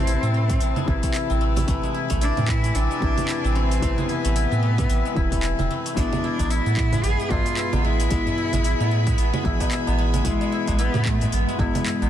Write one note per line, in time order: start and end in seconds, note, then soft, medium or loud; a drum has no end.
0.00 0.17 A1 medium
0.00 0.85 C3 loud
0.00 0.87 E3 medium
0.00 0.76 G#3 medium
0.00 0.34 A3 loud
0.00 0.22 C4 medium
0.00 1.40 C4 loud
0.00 0.89 E4 loud
0.00 5.92 E4 medium
0.00 0.88 B4 medium
0.00 12.10 B4 medium
0.00 1.64 A5 medium
0.07 0.87 E4 loud
0.07 open hi-hat medium
0.07 cabasa medium
0.23 0.58 A2 loud
0.23 0.61 C4 medium
0.23 cabasa soft
0.34 0.50 A3 medium
0.50 0.83 A3 medium
0.50 kick loud
0.50 open hi-hat soft
0.50 cabasa medium
0.60 0.74 A1 medium
0.60 1.29 C4 medium
0.60 open hi-hat medium
0.60 cabasa medium
0.76 1.82 G#3 medium
0.76 low conga medium
0.76 cabasa soft
0.85 1.00 A1 medium
0.85 1.64 C3 loud
0.85 1.65 E3 loud
0.85 1.14 E4 medium
0.85 1.66 E4 loud
0.85 1.66 B4 medium
0.85 kick loud
1.03 1.40 A3 medium
1.03 kick medium
1.03 open hi-hat soft
1.03 cabasa medium
1.14 1.94 E4 medium
1.14 clap medium
1.14 open hi-hat medium
1.14 cabasa medium
1.30 1.65 A1 medium
1.30 2.37 C4 medium
1.30 cabasa soft
1.41 1.56 A3 medium
1.56 1.67 A3 medium
1.56 open hi-hat soft
1.56 low conga medium
1.56 cabasa medium
1.66 1.81 A1 loud
1.66 2.98 C3 medium
1.66 2.99 E3 medium
1.66 1.89 A3 loud
1.66 3.00 E4 loud
1.66 3.00 B4 medium
1.66 5.92 G#5 medium
1.66 kick loud
1.66 open hi-hat medium
1.66 cabasa medium
1.83 2.90 G#3 medium
1.83 cabasa soft
1.94 2.21 E4 medium
2.10 2.32 A1 medium
2.10 2.48 A3 loud
2.10 kick medium
2.10 open hi-hat soft
2.10 cabasa medium
2.21 2.51 D4 loud
2.21 3.02 E4 loud
2.21 open hi-hat medium
2.21 cabasa medium
2.37 2.72 A2 loud
2.37 2.75 C4 medium
2.37 low conga medium
2.37 cabasa soft
2.48 2.63 A3 medium
2.48 2.77 E4 loud
2.48 kick loud
2.48 clap medium
2.64 2.97 A3 medium
2.64 open hi-hat soft
2.64 cabasa medium
2.75 2.88 A1 medium
2.75 3.44 C4 medium
2.75 3.57 D4 loud
2.75 open hi-hat medium
2.75 cabasa medium
2.91 3.97 G#3 medium
2.91 cabasa soft
3.00 3.15 A1 medium
3.00 3.79 C3 medium
3.00 3.79 E3 medium
3.00 3.28 E4 medium
3.00 3.81 E4 loud
3.00 3.80 B4 medium
3.00 kick loud
3.18 3.55 A3 medium
3.18 open hi-hat soft
3.18 low conga medium
3.18 cabasa medium
3.29 4.09 E4 medium
3.29 clap medium
3.29 open hi-hat medium
3.29 cabasa medium
3.44 3.79 A1 medium
3.44 4.51 C4 medium
3.44 cabasa soft
3.55 3.71 A3 medium
3.55 4.10 C4 loud
3.71 3.82 A3 medium
3.71 open hi-hat soft
3.71 cabasa medium
3.80 3.95 A1 loud
3.80 5.12 C3 loud
3.80 5.13 E3 loud
3.80 4.04 A3 loud
3.80 5.14 E4 loud
3.80 5.14 B4 medium
3.80 kick loud
3.80 open hi-hat medium
3.80 cabasa medium
3.98 5.04 G#3 medium
3.98 low conga medium
3.98 cabasa soft
4.09 5.70 B3 loud
4.09 4.35 E4 medium
4.09 open hi-hat soft
4.25 4.46 A1 medium
4.25 4.62 A3 loud
4.25 open hi-hat soft
4.25 cabasa medium
4.36 5.16 E4 loud
4.36 open hi-hat medium
4.36 cabasa medium
4.52 4.86 A2 loud
4.52 4.89 C4 medium
4.52 cabasa soft
4.63 4.78 A3 medium
4.78 5.11 A3 medium
4.78 kick loud
4.78 open hi-hat soft
4.78 low conga medium
4.78 cabasa medium
4.89 5.02 A1 medium
4.89 5.59 C4 medium
4.89 open hi-hat medium
4.89 cabasa medium
5.05 5.96 G#3 medium
5.05 cabasa soft
5.14 5.54 E1 loud
5.14 5.93 C3 medium
5.14 5.93 E3 medium
5.14 5.43 E4 medium
5.14 5.95 E4 medium
5.14 5.94 B4 medium
5.14 kick loud
5.32 5.70 A3 medium
5.32 kick medium
5.32 open hi-hat soft
5.32 cabasa medium
5.43 6.23 E4 medium
5.43 clap medium
5.43 open hi-hat medium
5.43 cabasa medium
5.59 5.68 E1 medium
5.59 6.72 C4 medium
5.59 low conga medium
5.59 cabasa soft
5.71 5.86 A3 medium
5.86 6.03 A3 medium
5.86 open hi-hat soft
5.86 cabasa medium
5.94 6.09 A1 loud
5.94 7.27 B2 loud
5.94 7.27 E3 medium
5.94 7.28 G#3 medium
5.94 6.11 G#3 loud
5.94 7.28 B3 medium
5.94 6.52 D4 loud
5.94 7.29 E4 loud
5.94 12.10 G#4 medium
5.94 12.10 E5 medium
5.94 12.10 B5 medium
5.94 kick loud
5.94 open hi-hat medium
5.94 cabasa medium
6.12 6.38 G#3 medium
6.12 tabla tin medium
6.12 low conga medium
6.12 cabasa soft
6.24 6.50 E4 medium
6.39 6.60 A1 loud
6.39 6.76 G#3 loud
6.39 kick medium
6.39 open hi-hat soft
6.39 tabla na medium
6.39 cabasa medium
6.50 7.05 E4 loud
6.50 7.30 E4 loud
6.50 open hi-hat medium
6.50 cabasa medium
6.66 7.01 A2 loud
6.66 7.04 B3 medium
6.66 cabasa soft
6.77 6.92 G#3 medium
6.77 kick loud
6.77 clap medium
6.92 7.18 G#3 medium
6.92 open hi-hat soft
6.92 tabla ge medium
6.92 low conga medium
6.92 cabasa medium
7.04 7.17 A1 medium
7.04 7.73 B3 medium
7.04 7.32 G#4 loud
7.04 open hi-hat medium
7.04 cabasa medium
7.19 7.45 G#3 medium
7.19 cabasa soft
7.29 7.43 A1 medium
7.29 8.07 B2 medium
7.29 8.08 G#3 medium
7.29 8.09 B3 medium
7.29 7.57 E4 medium
7.29 7.86 F4 loud
7.29 8.09 E5 medium
7.29 kick loud
7.29 tabla na medium
7.29 tabla ge medium
7.46 7.83 G#3 medium
7.46 open hi-hat soft
7.46 cabasa medium
7.57 8.37 E4 medium
7.57 clap medium
7.57 open hi-hat medium
7.57 cabasa medium
7.73 8.08 A1 medium
7.73 8.80 B3 medium
7.73 tabla na medium
7.73 low conga medium
7.73 cabasa soft
7.84 7.99 G#3 medium
7.84 9.99 E4 loud
8.00 8.10 G#3 medium
8.00 open hi-hat soft
8.00 cabasa medium
8.09 8.24 A1 loud
8.09 9.41 B2 medium
8.09 9.42 E3 medium
8.09 9.42 G#3 medium
8.09 8.26 G#3 loud
8.09 9.43 B3 medium
8.09 9.43 E4 loud
8.09 kick loud
8.09 open hi-hat medium
8.09 cabasa medium
8.26 8.53 G#3 medium
8.26 tabla tin medium
8.26 tabla ge medium
8.26 cabasa soft
8.38 8.64 E4 medium
8.53 8.74 A1 loud
8.53 8.90 G#3 loud
8.53 open hi-hat soft
8.53 low conga medium
8.53 cabasa medium
8.64 9.45 E4 loud
8.64 open hi-hat medium
8.64 cabasa medium
8.80 9.15 A2 loud
8.80 9.17 B3 medium
8.80 tabla na soft
8.80 cabasa soft
8.91 9.06 G#3 medium
9.07 9.32 G#3 medium
9.07 kick loud
9.07 open hi-hat soft
9.07 cabasa medium
9.18 9.31 A1 medium
9.18 9.87 B3 medium
9.18 open hi-hat medium
9.18 cabasa medium
9.34 9.59 G#3 medium
9.34 low conga medium
9.34 cabasa soft
9.43 9.58 A1 medium
9.43 10.21 B2 medium
9.43 10.22 E3 loud
9.43 10.22 G#3 loud
9.43 10.23 B3 medium
9.43 9.71 E4 medium
9.43 10.23 E4 loud
9.43 kick loud
9.43 tabla tin medium
9.60 9.97 G#3 medium
9.60 kick medium
9.60 open hi-hat soft
9.60 tabla na medium
9.60 cabasa medium
9.71 10.52 E4 medium
9.71 clap medium
9.71 open hi-hat medium
9.71 cabasa medium
9.87 10.22 A1 medium
9.87 10.94 B3 medium
9.87 tabla na medium
9.87 cabasa soft
9.99 10.13 G#3 medium
10.14 10.24 G#3 medium
10.14 open hi-hat soft
10.14 tabla tin medium
10.14 low conga medium
10.14 cabasa medium
10.23 10.38 A1 loud
10.23 11.55 B2 loud
10.23 11.56 E3 medium
10.23 10.80 G#3 loud
10.23 11.56 G#3 medium
10.23 10.40 G#3 loud
10.23 11.57 B3 medium
10.23 kick loud
10.23 open hi-hat medium
10.23 cabasa medium
10.27 11.57 E4 loud
10.41 10.67 G#3 medium
10.41 tabla tin medium
10.41 cabasa soft
10.52 10.78 E4 medium
10.68 10.89 A1 loud
10.68 11.05 G#3 loud
10.68 kick medium
10.68 open hi-hat soft
10.68 tabla na medium
10.68 cabasa medium
10.79 11.07 B3 loud
10.79 11.59 E4 loud
10.79 open hi-hat medium
10.79 cabasa medium
10.94 11.29 A2 loud
10.94 11.32 B3 medium
10.94 low conga medium
10.94 cabasa soft
11.05 11.20 G#3 medium
11.05 11.35 A3 loud
11.05 kick medium
11.05 clap medium
11.21 11.47 G#3 medium
11.21 open hi-hat soft
11.21 tabla ge medium
11.21 cabasa medium
11.32 11.45 A1 medium
11.32 12.10 G#3 loud
11.32 12.02 B3 medium
11.32 open hi-hat medium
11.32 cabasa soft
11.49 11.74 G#3 medium
11.49 cabasa soft
11.57 11.72 A1 medium
11.57 12.10 B2 medium
11.57 12.10 E3 medium
11.57 12.10 G#3 medium
11.57 12.10 B3 medium
11.57 11.86 E4 medium
11.57 kick loud
11.57 tabla na medium
11.57 tabla ge medium
11.61 12.10 E4 medium
11.75 12.10 G#3 medium
11.75 open hi-hat soft
11.75 low conga medium
11.75 cabasa medium
11.86 12.10 E4 medium
11.86 clap medium
11.86 open hi-hat medium
11.86 cabasa medium
12.02 12.10 A1 medium
12.02 12.10 B3 medium
12.02 tabla na medium
12.02 cabasa soft